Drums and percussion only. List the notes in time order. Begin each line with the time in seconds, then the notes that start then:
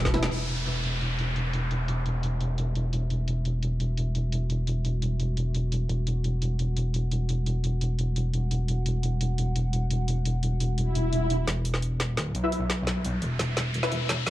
0.05 kick, snare
0.14 snare, open hi-hat
0.23 snare
0.31 closed hi-hat, crash
0.49 closed hi-hat
0.66 closed hi-hat
0.84 closed hi-hat
1.01 closed hi-hat
1.19 closed hi-hat
1.36 closed hi-hat
1.53 closed hi-hat
1.71 closed hi-hat
1.88 closed hi-hat
2.06 closed hi-hat
2.23 closed hi-hat
2.41 closed hi-hat
2.58 closed hi-hat
2.75 closed hi-hat
2.93 closed hi-hat
3.10 closed hi-hat
3.28 closed hi-hat
3.45 closed hi-hat
3.63 closed hi-hat
3.80 closed hi-hat
3.97 closed hi-hat
4.15 closed hi-hat
4.32 closed hi-hat
4.50 closed hi-hat
4.67 closed hi-hat
4.85 closed hi-hat
5.02 closed hi-hat
5.20 closed hi-hat
5.37 closed hi-hat
5.54 closed hi-hat
5.72 closed hi-hat
5.89 closed hi-hat
6.07 closed hi-hat
6.24 closed hi-hat
6.42 closed hi-hat
6.59 closed hi-hat
6.77 closed hi-hat
6.94 closed hi-hat
7.11 closed hi-hat
7.29 closed hi-hat
7.46 closed hi-hat
7.64 closed hi-hat
7.81 closed hi-hat
7.99 closed hi-hat
8.16 closed hi-hat
8.34 closed hi-hat
8.51 closed hi-hat
8.68 closed hi-hat
8.86 closed hi-hat
9.03 closed hi-hat
9.21 closed hi-hat
9.38 closed hi-hat
9.56 closed hi-hat
9.73 closed hi-hat
9.91 closed hi-hat
10.08 closed hi-hat
10.25 closed hi-hat
10.43 closed hi-hat
10.60 closed hi-hat
10.78 closed hi-hat
10.95 closed hi-hat
11.13 closed hi-hat
11.30 closed hi-hat
11.47 snare, closed hi-hat
11.65 closed hi-hat
11.74 snare
11.82 closed hi-hat
12.00 snare, closed hi-hat
12.17 snare, closed hi-hat
12.35 closed hi-hat
12.52 closed hi-hat
12.70 snare, closed hi-hat
12.87 snare, closed hi-hat
13.05 closed hi-hat
13.22 closed hi-hat
13.39 snare, closed hi-hat
13.57 snare, closed hi-hat
13.74 closed hi-hat
13.83 snare
13.92 closed hi-hat
14.09 snare, closed hi-hat
14.27 snare, closed hi-hat